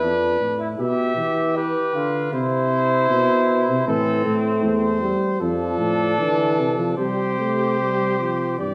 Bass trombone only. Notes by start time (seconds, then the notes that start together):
0.02 F2
0.40 A2
0.79 B2
1.17 E3
1.94 D3
2.33 C3
3.10 B2
3.68 C3
3.87 A2
4.26 A2
4.64 E2
5.41 F2
5.79 A2
6.19 D3
6.58 C3
6.98 C3
8.60 G2